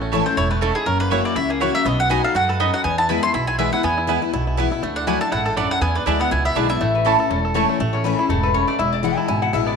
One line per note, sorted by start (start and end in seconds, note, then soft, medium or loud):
0.00 0.20 A1 medium
0.00 0.35 A2 medium
0.00 0.23 A3 medium
0.00 0.35 C#4 medium
0.12 0.26 E3 medium
0.12 0.22 A3 medium
0.12 0.26 A3 medium
0.12 0.27 C#4 medium
0.12 0.22 E4 medium
0.12 0.36 E4 medium
0.12 0.25 E4 loud
0.12 0.22 C#5 medium
0.12 0.23 A5 medium
0.26 0.50 A3 medium
0.26 0.38 C#4 soft
0.26 0.37 E4 medium
0.26 0.37 C5 medium
0.37 0.69 E1 medium
0.37 0.61 A2 medium
0.37 0.73 E4 medium
0.37 0.50 C#5 medium
0.51 0.85 A3 medium
0.51 0.61 B4 medium
0.61 0.86 G#2 medium
0.61 0.72 A3 medium
0.61 0.86 C#4 medium
0.61 0.72 E4 medium
0.61 0.75 A4 medium
0.61 0.72 C#5 medium
0.61 0.72 A5 loud
0.75 0.87 E4 medium
0.75 0.86 G#4 medium
0.86 1.19 F#1 medium
0.86 1.34 F#2 medium
0.86 1.22 C#4 medium
0.86 1.00 A#4 medium
1.00 1.34 A#3 medium
1.00 1.11 B4 loud
1.10 1.35 E3 medium
1.10 1.21 A#3 medium
1.10 1.35 A#3 medium
1.10 1.36 C#4 medium
1.10 1.21 E4 loud
1.10 1.24 E4 medium
1.10 1.36 F#4 medium
1.10 1.21 C#5 medium
1.10 1.25 C#5 medium
1.10 1.21 F#5 loud
1.25 1.34 E4 medium
1.25 1.36 D5 medium
1.36 1.68 C#2 medium
1.36 1.83 C#3 medium
1.36 1.59 E4 medium
1.36 1.49 E5 medium
1.50 1.73 A#3 medium
1.50 1.61 G#4 medium
1.60 1.74 E3 medium
1.60 1.71 A#3 medium
1.60 1.74 A#3 medium
1.60 1.75 C#4 medium
1.60 1.71 E4 medium
1.60 1.85 E4 medium
1.60 1.73 F#4 loud
1.60 1.71 C#5 loud
1.60 1.74 C#5 medium
1.60 1.71 F#5 loud
1.74 1.85 A#3 medium
1.74 1.86 C#4 soft
1.74 1.85 F#4 medium
1.74 1.85 E5 loud
1.85 2.18 B1 medium
1.85 2.33 B2 medium
1.85 2.27 B3 medium
1.85 1.99 D#5 medium
2.00 2.10 F#5 loud
2.09 2.23 F#3 medium
2.09 2.20 B3 medium
2.09 2.24 B3 medium
2.09 2.24 D#4 medium
2.09 2.34 F#4 medium
2.09 2.20 F#4 medium
2.09 2.22 F#4 medium
2.09 2.20 D#5 medium
2.09 2.24 G#5 loud
2.09 2.21 B5 loud
2.23 2.35 D#4 medium
2.23 2.34 F#4 medium
2.23 2.48 A4 medium
2.23 2.35 F5 medium
2.35 2.67 F#2 medium
2.35 2.59 G#2 medium
2.35 2.71 F#4 medium
2.35 2.49 F#5 loud
2.49 2.82 A4 medium
2.49 2.60 B4 medium
2.60 2.83 F#2 medium
2.60 2.70 B3 medium
2.60 2.85 D#4 medium
2.60 2.70 F#4 loud
2.60 2.73 D#5 medium
2.60 2.70 D#5 medium
2.60 2.70 B5 medium
2.74 2.85 F#4 medium
2.74 2.84 F#5 medium
2.84 3.32 E2 medium
2.84 3.17 E2 medium
2.84 3.20 B3 medium
2.84 2.98 G#5 medium
2.98 3.10 E4 medium
2.98 3.09 A5 loud
3.09 3.22 E3 medium
3.09 3.23 G#3 medium
3.09 3.19 B3 medium
3.09 3.23 B3 medium
3.09 3.19 E4 medium
3.09 3.23 E4 medium
3.09 3.21 E4 medium
3.09 3.19 B4 medium
3.09 3.20 G#5 loud
3.09 3.22 B5 medium
3.23 3.35 B3 soft
3.23 3.33 E4 medium
3.23 3.34 E4 medium
3.23 3.34 C6 loud
3.34 3.67 B1 medium
3.34 3.81 B2 medium
3.34 3.48 E4 medium
3.34 3.47 B5 medium
3.47 3.59 E4 medium
3.47 3.58 G#5 medium
3.58 3.72 E3 medium
3.58 3.72 G#3 medium
3.58 3.69 B3 medium
3.58 3.73 B3 medium
3.58 3.69 E4 medium
3.58 3.73 E4 medium
3.58 3.71 E4 medium
3.58 3.69 B4 medium
3.58 3.72 E5 medium
3.58 3.69 G#5 medium
3.72 3.84 B3 soft
3.72 3.83 E4 medium
3.72 3.98 E4 medium
3.72 3.83 F#5 medium
3.83 4.31 E2 medium
3.83 4.16 E2 medium
3.83 4.20 B3 medium
3.83 4.20 G#5 medium
3.98 4.09 E4 medium
4.07 4.21 E3 medium
4.07 4.21 G#3 medium
4.07 4.18 B3 medium
4.07 4.22 B3 medium
4.07 4.19 E4 medium
4.07 4.22 E4 medium
4.07 4.21 E4 loud
4.07 4.19 B4 medium
4.07 4.19 G#5 medium
4.22 4.34 B3 medium
4.22 4.33 E4 medium
4.33 4.65 B1 medium
4.33 4.81 B2 medium
4.33 4.47 E4 medium
4.47 4.58 E4 medium
4.57 4.71 E3 medium
4.57 4.71 G#3 medium
4.57 4.68 B3 medium
4.57 4.72 B3 medium
4.57 4.68 E4 medium
4.57 4.72 E4 medium
4.57 4.70 E4 loud
4.57 4.68 B4 medium
4.57 4.68 G#5 medium
4.71 4.83 B3 soft
4.71 4.82 E4 medium
4.71 4.99 E4 medium
4.82 5.15 D2 medium
4.82 5.30 D3 medium
4.82 5.19 A3 medium
4.96 5.30 D4 medium
4.96 5.07 F#5 medium
5.07 5.20 F#3 medium
5.07 5.17 A3 medium
5.07 5.21 A3 medium
5.07 5.21 D4 medium
5.07 5.31 E4 medium
5.07 5.17 E4 medium
5.07 5.19 E4 medium
5.07 5.18 D5 medium
5.07 5.18 F#5 loud
5.07 5.21 G#5 medium
5.21 5.33 D4 soft
5.21 5.32 E4 medium
5.21 5.44 A4 medium
5.21 5.32 A5 loud
5.32 5.64 A1 medium
5.32 5.56 G#2 medium
5.32 5.70 E4 medium
5.32 5.46 F#5 medium
5.46 5.79 A4 medium
5.46 5.57 A4 medium
5.57 5.81 F#2 medium
5.57 5.67 A3 medium
5.57 5.82 D4 medium
5.57 5.67 E4 medium
5.57 5.70 D5 medium
5.57 5.67 D5 medium
5.57 5.67 F#5 medium
5.71 5.99 E4 medium
5.71 5.81 F#5 loud
5.81 5.97 E2 medium
5.81 6.29 E2 medium
5.81 6.17 B3 medium
5.81 5.95 G#5 medium
5.95 6.29 D4 medium
5.95 6.06 B4 medium
6.06 6.27 D2 medium
6.06 6.19 D3 medium
6.06 6.20 G#3 medium
6.06 6.20 B3 medium
6.06 6.16 D4 medium
6.06 6.31 E4 medium
6.06 6.18 E4 medium
6.06 6.17 G#4 medium
6.06 6.20 D5 medium
6.06 6.17 E5 loud
6.06 6.17 B5 loud
6.19 6.44 B3 medium
6.19 6.32 B3 soft
6.19 6.30 E4 medium
6.19 6.31 F#5 medium
6.31 6.52 C#2 medium
6.31 6.79 B2 medium
6.31 6.70 E4 medium
6.31 6.45 G#5 medium
6.45 6.79 B3 medium
6.45 6.56 E5 medium
6.55 6.77 B1 medium
6.55 6.69 D3 medium
6.55 6.69 G#3 medium
6.55 6.70 B3 loud
6.55 6.66 D4 medium
6.55 6.81 D4 medium
6.55 6.68 E4 medium
6.55 6.66 G#4 loud
6.55 6.69 D5 medium
6.55 6.66 E5 loud
6.55 6.66 B5 loud
6.69 6.81 B3 soft
6.69 6.80 E4 medium
6.69 7.55 E4 medium
6.69 7.26 E5 loud
6.80 7.13 A1 medium
6.80 7.28 A2 medium
6.80 7.17 A3 medium
6.95 7.05 B4 medium
7.05 7.18 E3 medium
7.05 7.15 A3 medium
7.05 7.19 A3 medium
7.05 7.30 C#4 medium
7.05 7.19 C#4 medium
7.05 7.16 E4 medium
7.05 7.18 E4 loud
7.05 7.29 A4 medium
7.05 7.16 C#5 loud
7.05 7.16 A5 loud
7.19 7.31 C#4 soft
7.19 7.30 E4 medium
7.19 7.44 A4 medium
7.30 7.63 E1 medium
7.30 7.78 E2 medium
7.30 7.66 C#4 medium
7.30 7.56 A4 medium
7.45 7.78 A4 medium
7.54 7.78 E3 medium
7.54 7.65 A3 medium
7.54 7.79 A3 medium
7.54 7.79 C#4 medium
7.54 7.65 E4 medium
7.54 7.80 E4 medium
7.54 7.78 C#5 loud
7.54 7.65 C#5 medium
7.54 7.66 A5 medium
7.69 7.79 A3 medium
7.79 8.12 A1 medium
7.79 8.27 A2 medium
7.79 8.04 A3 medium
7.93 8.28 C#4 medium
7.93 8.04 C#5 medium
8.04 8.18 E3 medium
8.04 8.18 A3 medium
8.04 8.28 A3 medium
8.04 8.18 C#4 medium
8.04 8.17 E4 loud
8.04 8.18 B4 medium
8.18 8.30 C#4 medium
8.18 8.29 E4 medium
8.18 8.52 E4 medium
8.18 8.29 G#4 medium
8.29 8.62 E1 medium
8.29 8.53 G#2 medium
8.29 8.65 A3 medium
8.29 8.43 A4 medium
8.43 8.77 A4 medium
8.43 8.54 B4 medium
8.54 8.78 F#2 medium
8.54 8.79 C#4 medium
8.54 8.67 C#5 medium
8.67 8.79 A3 medium
8.67 8.78 D5 medium
8.78 9.11 E1 medium
8.78 9.27 E2 medium
8.78 9.03 E4 medium
8.78 8.92 E5 medium
8.92 9.03 D5 medium
9.03 9.27 E3 medium
9.03 9.27 G#3 medium
9.03 9.28 B3 loud
9.03 9.16 E4 medium
9.03 9.28 E4 loud
9.03 9.17 F#5 medium
9.17 9.27 E4 medium
9.17 9.27 A5 loud
9.28 9.49 G#1 medium
9.28 9.76 B2 medium
9.28 9.41 E4 medium
9.28 9.42 G#5 medium
9.42 9.52 E4 medium
9.42 9.53 F#5 loud
9.53 9.74 A1 medium
9.53 9.76 E3 medium
9.53 9.76 G#3 medium
9.53 9.76 B3 medium
9.53 9.76 E4 medium
9.53 9.67 E5 medium
9.67 9.76 B3 medium
9.67 9.76 D5 medium